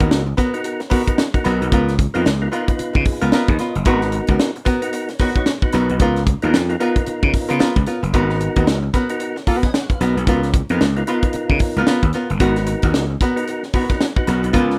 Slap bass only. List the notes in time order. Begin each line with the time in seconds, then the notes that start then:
0.01 D#2
0.12 C#2
1.46 B1
1.61 B1
1.72 C#2
2.15 F2
2.26 C#2
2.80 muted slap bass stroke
2.96 C#3
3.22 C#2
3.32 muted slap bass stroke
3.49 D#2
3.75 F#1
3.86 G#1
4.29 C#2
5.74 B1
5.90 B1
6.00 C#2
6.43 D#2
6.54 F2
7.07 muted slap bass stroke
7.23 C#3
7.51 C#3
7.61 muted slap bass stroke
7.76 C#2
8.03 F#1
8.14 G#1
8.57 D#2
8.68 C#2
10.01 B1
10.16 B1
10.28 C#2
10.70 F2
10.81 C#2
11.34 muted slap bass stroke
11.50 C#3
11.76 C#2
11.87 muted slap bass stroke
12.03 D#2
12.30 F#1
12.40 G#1
12.84 D#2
12.94 C#2
14.28 B1
14.44 B1
14.54 C#2